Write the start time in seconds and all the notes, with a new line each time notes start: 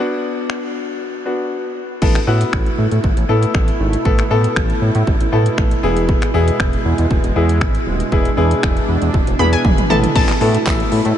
Already playing: B3
0.00 D4 F#4
0.50 finger snap
1.25 B3 D4 F#4
2.02 A1 B2 A3 B3 E4 A4, kick, crash
2.15 finger snap, closed hi-hat
2.27 A2 B3 E4 F#4
2.41 closed hi-hat
2.53 A1, finger snap, kick
2.66 closed hi-hat
2.78 A2
2.91 A2, closed hi-hat
3.04 A1, kick
3.17 A1, closed hi-hat
3.29 A2 B3 E4 A4
3.43 closed hi-hat
3.54 A1, finger snap, kick
3.68 closed hi-hat
3.80 G#1
3.93 closed hi-hat
4.05 A1 B3 E4 A4, kick
4.18 finger snap, closed hi-hat
4.30 A2 B3 E4 A4
4.44 closed hi-hat
4.56 A1, finger snap, kick
4.70 closed hi-hat
4.82 A2
4.95 A2, closed hi-hat
5.07 A1, kick
5.20 A1, closed hi-hat
5.32 A2 B3 E4 A4
5.46 closed hi-hat
5.58 A1, finger snap, kick
5.71 closed hi-hat
5.83 E1 G#3 B3 E4 G#4
5.97 closed hi-hat
6.09 kick
6.22 finger snap, closed hi-hat
6.34 E2 B3 E4 G#4
6.48 closed hi-hat
6.60 E1, finger snap, kick
6.73 closed hi-hat
6.85 E2
6.98 E2, closed hi-hat
7.11 E1, kick
7.24 E1, closed hi-hat
7.36 E2 B3 E4 G#4
7.49 closed hi-hat
7.61 G#1, finger snap, kick
7.75 closed hi-hat
7.87 D#1 D4
8.00 closed hi-hat
8.12 E1 B3 E4 G#4, kick
8.25 closed hi-hat
8.37 E2 B3 E4 G#4
8.51 closed hi-hat
8.63 E1, finger snap, kick
8.77 closed hi-hat
8.89 E2
9.02 E2, closed hi-hat
9.14 E1, kick, high tom
9.27 E1, closed hi-hat
9.39 E2 B3 E4 G#4 B5, mid tom
9.53 G#5, closed hi-hat
9.65 E1, kick, mid tom
9.78 closed hi-hat, mid tom
9.90 A1 B2 A3 B3 E4 A4 A5, floor tom
10.03 closed hi-hat, floor tom
10.15 A1 B2 A3 B3 E4 A4 A5, kick, crash
10.29 clap, closed hi-hat
10.41 A2 B3 E4 A4, open hi-hat
10.54 closed hi-hat
10.66 A1 B3 E4 A4, kick, clap, tambourine
10.80 closed hi-hat
10.92 A2, open hi-hat
11.05 A2, closed hi-hat